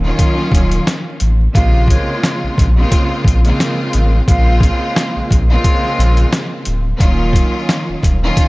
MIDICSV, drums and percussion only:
0, 0, Header, 1, 2, 480
1, 0, Start_track
1, 0, Key_signature, -5, "minor"
1, 0, Tempo, 681818
1, 1091, Time_signature, 4, 2, 24, 8
1, 5970, End_track
2, 0, Start_track
2, 0, Title_t, "Drums"
2, 132, Note_on_c, 9, 36, 88
2, 132, Note_on_c, 9, 42, 91
2, 202, Note_off_c, 9, 36, 0
2, 203, Note_off_c, 9, 42, 0
2, 274, Note_on_c, 9, 38, 33
2, 344, Note_off_c, 9, 38, 0
2, 363, Note_on_c, 9, 36, 91
2, 384, Note_on_c, 9, 42, 71
2, 433, Note_off_c, 9, 36, 0
2, 455, Note_off_c, 9, 42, 0
2, 503, Note_on_c, 9, 42, 48
2, 574, Note_off_c, 9, 42, 0
2, 613, Note_on_c, 9, 38, 109
2, 613, Note_on_c, 9, 40, 88
2, 619, Note_on_c, 9, 42, 94
2, 684, Note_off_c, 9, 38, 0
2, 684, Note_off_c, 9, 40, 0
2, 690, Note_off_c, 9, 42, 0
2, 845, Note_on_c, 9, 42, 77
2, 915, Note_off_c, 9, 42, 0
2, 1090, Note_on_c, 9, 36, 119
2, 1095, Note_on_c, 9, 42, 83
2, 1161, Note_off_c, 9, 36, 0
2, 1165, Note_off_c, 9, 42, 0
2, 1322, Note_on_c, 9, 36, 96
2, 1341, Note_on_c, 9, 42, 80
2, 1392, Note_off_c, 9, 36, 0
2, 1411, Note_off_c, 9, 42, 0
2, 1573, Note_on_c, 9, 38, 106
2, 1573, Note_on_c, 9, 40, 89
2, 1582, Note_on_c, 9, 42, 81
2, 1643, Note_off_c, 9, 38, 0
2, 1644, Note_off_c, 9, 40, 0
2, 1653, Note_off_c, 9, 42, 0
2, 1813, Note_on_c, 9, 38, 36
2, 1816, Note_on_c, 9, 36, 86
2, 1825, Note_on_c, 9, 42, 76
2, 1883, Note_off_c, 9, 38, 0
2, 1886, Note_off_c, 9, 36, 0
2, 1895, Note_off_c, 9, 42, 0
2, 2053, Note_on_c, 9, 36, 91
2, 2054, Note_on_c, 9, 42, 92
2, 2123, Note_off_c, 9, 36, 0
2, 2124, Note_off_c, 9, 42, 0
2, 2284, Note_on_c, 9, 36, 91
2, 2307, Note_on_c, 9, 42, 72
2, 2355, Note_off_c, 9, 36, 0
2, 2378, Note_off_c, 9, 42, 0
2, 2427, Note_on_c, 9, 42, 45
2, 2498, Note_off_c, 9, 42, 0
2, 2536, Note_on_c, 9, 38, 112
2, 2536, Note_on_c, 9, 40, 88
2, 2542, Note_on_c, 9, 42, 96
2, 2606, Note_off_c, 9, 38, 0
2, 2606, Note_off_c, 9, 40, 0
2, 2612, Note_off_c, 9, 42, 0
2, 2768, Note_on_c, 9, 42, 76
2, 2839, Note_off_c, 9, 42, 0
2, 3011, Note_on_c, 9, 36, 117
2, 3016, Note_on_c, 9, 42, 84
2, 3082, Note_off_c, 9, 36, 0
2, 3086, Note_off_c, 9, 42, 0
2, 3242, Note_on_c, 9, 36, 99
2, 3261, Note_on_c, 9, 42, 77
2, 3313, Note_off_c, 9, 36, 0
2, 3332, Note_off_c, 9, 42, 0
2, 3495, Note_on_c, 9, 38, 106
2, 3495, Note_on_c, 9, 40, 86
2, 3504, Note_on_c, 9, 42, 82
2, 3565, Note_off_c, 9, 38, 0
2, 3565, Note_off_c, 9, 40, 0
2, 3574, Note_off_c, 9, 42, 0
2, 3736, Note_on_c, 9, 36, 89
2, 3745, Note_on_c, 9, 42, 75
2, 3806, Note_off_c, 9, 36, 0
2, 3816, Note_off_c, 9, 42, 0
2, 3972, Note_on_c, 9, 36, 92
2, 3973, Note_on_c, 9, 42, 88
2, 4043, Note_off_c, 9, 36, 0
2, 4044, Note_off_c, 9, 42, 0
2, 4115, Note_on_c, 9, 38, 32
2, 4185, Note_off_c, 9, 38, 0
2, 4225, Note_on_c, 9, 42, 73
2, 4295, Note_off_c, 9, 42, 0
2, 4344, Note_on_c, 9, 42, 45
2, 4415, Note_off_c, 9, 42, 0
2, 4453, Note_on_c, 9, 38, 113
2, 4453, Note_on_c, 9, 40, 91
2, 4459, Note_on_c, 9, 42, 94
2, 4523, Note_off_c, 9, 38, 0
2, 4523, Note_off_c, 9, 40, 0
2, 4529, Note_off_c, 9, 42, 0
2, 4684, Note_on_c, 9, 42, 77
2, 4755, Note_off_c, 9, 42, 0
2, 4929, Note_on_c, 9, 36, 116
2, 4933, Note_on_c, 9, 42, 84
2, 5000, Note_off_c, 9, 36, 0
2, 5003, Note_off_c, 9, 42, 0
2, 5161, Note_on_c, 9, 36, 102
2, 5179, Note_on_c, 9, 42, 78
2, 5231, Note_off_c, 9, 36, 0
2, 5250, Note_off_c, 9, 42, 0
2, 5413, Note_on_c, 9, 38, 108
2, 5413, Note_on_c, 9, 40, 88
2, 5422, Note_on_c, 9, 42, 80
2, 5483, Note_off_c, 9, 38, 0
2, 5483, Note_off_c, 9, 40, 0
2, 5492, Note_off_c, 9, 42, 0
2, 5650, Note_on_c, 9, 38, 38
2, 5654, Note_on_c, 9, 36, 89
2, 5662, Note_on_c, 9, 42, 75
2, 5720, Note_off_c, 9, 38, 0
2, 5725, Note_off_c, 9, 36, 0
2, 5732, Note_off_c, 9, 42, 0
2, 5891, Note_on_c, 9, 36, 93
2, 5892, Note_on_c, 9, 42, 92
2, 5962, Note_off_c, 9, 36, 0
2, 5963, Note_off_c, 9, 42, 0
2, 5970, End_track
0, 0, End_of_file